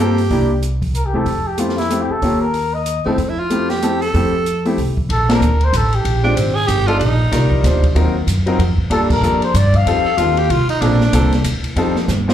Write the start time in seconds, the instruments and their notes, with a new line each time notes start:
Already playing: upright bass G2, tenor saxophone G4
0.00 grand piano A#3 C4 F4 A4
0.18 open hi-hat
0.30 upright bass C2, grand piano A#3 D4 E4 G4, kick, open hi-hat
0.63 closed hi-hat
0.82 kick, open hi-hat
0.95 trumpet A#4, closed hi-hat
1.06 trumpet G4
1.13 upright bass C3, grand piano A3 C4 E4 G4, trumpet A4
1.26 upright bass F2, kick, open hi-hat
1.47 trumpet G4
1.58 grand piano A3 C4 E4 G4, trumpet F4, closed hi-hat
1.69 snare
1.78 trumpet E4, snare, open hi-hat
1.90 grand piano A3 C4 E4 G4, closed hi-hat
2.01 trumpet G4
2.09 trumpet A4, muted upright bass stroke
2.22 upright bass D#2, grand piano A#3 C#4 F4 G4, kick, open hi-hat
2.41 trumpet A#4
2.54 open hi-hat
2.74 trumpet D#5
2.86 closed hi-hat
3.06 upright bass F#2, grand piano A3 C4 E4 A4, tenor saxophone C4
3.18 upright bass F2, kick, open hi-hat
3.29 tenor saxophone E4
3.40 tenor saxophone F4
3.50 grand piano A3 C4 E4 G4, closed hi-hat
3.70 tenor saxophone G4, snare, open hi-hat
3.82 grand piano A3 C4 E4 A4, closed hi-hat
4.02 tenor saxophone A4, open hi-hat
4.14 upright bass F2, grand piano A3 C4 E4 G4, kick, open hi-hat
4.46 closed hi-hat
4.65 grand piano A3 C4 E4 G4, open hi-hat
4.77 upright bass C2, open hi-hat
4.97 kick
5.09 upright bass A#1, trumpet A4, kick, ride
5.29 grand piano A#3 C4 D4 F4 A4, trumpet A#4, snare, ride
5.40 upright bass D2, hi-hat pedal
5.61 trumpet C5, ride
5.73 upright bass A1, trumpet A4, kick, hi-hat pedal, ride
5.93 trumpet G4, ride
6.05 upright bass A#1, kick, ride
6.23 grand piano G#3 C4 D4 F4 G4, tenor saxophone D4
6.36 upright bass G#1, tenor saxophone C4, kick, hi-hat pedal, ride
6.55 tenor saxophone G#4
6.67 upright bass G1, tenor saxophone G4, kick, hi-hat pedal, ride
6.87 grand piano G3 D4 D#4 F4 A4, tenor saxophone F4, ride
6.99 upright bass A#1, tenor saxophone D#4, kick, ride
7.31 upright bass C2, grand piano G3 D#4 F4 A#4 D5, kick, snare, hi-hat pedal, ride
7.52 kick
7.64 upright bass D2, grand piano G3 D4 D#4 F4 C5, kick, snare, hi-hat pedal, ride
7.83 kick, ride
7.95 upright bass D#2, grand piano F#3 C4 D#4 F4 A#4, kick, ride
8.27 upright bass F#2, kick, hi-hat pedal, ride
8.46 grand piano F#3 C4 D#4 F4 A#4, ride
8.59 upright bass F2, kick, ride
8.78 muted upright bass stroke, kick
8.90 upright bass G2, grand piano G3 A#3 D4 F4 A4, trumpet A4, kick, ride
9.10 trumpet A#4, kick, crash
9.21 upright bass F2, grand piano G3 A#3 D4 F4 A4, hi-hat pedal
9.42 trumpet C5, ride
9.54 upright bass G2, trumpet D5, kick, hi-hat pedal, ride
9.74 trumpet F5, kick, ride
9.86 upright bass F2, grand piano G3 C4 D#4 F4 A4, kick, ride
10.05 tenor saxophone A4
10.18 upright bass D#2, grand piano G3 C4 D#4 F4 A4, tenor saxophone F4, kick, hi-hat pedal, ride
10.37 tenor saxophone G4, ride
10.49 upright bass C2, tenor saxophone F4, kick, ride
10.68 tenor saxophone D#4, muted upright bass stroke, ride
10.80 upright bass A#1, grand piano A#3 C4 D4 F4 A4, tenor saxophone D4, kick, ride
11.01 snare
11.13 upright bass C2, grand piano A#3 C4 D4 F4 A4, kick, hi-hat pedal, ride
11.32 snare, ride
11.44 upright bass D2, kick, hi-hat pedal, ride
11.64 ride
11.76 upright bass F2, grand piano G3 C4 D#4 F4 A4, kick, ride
11.96 snare
12.08 upright bass G2, snare, hi-hat pedal
12.28 grand piano G3 C4 D#4 F4 C5, snare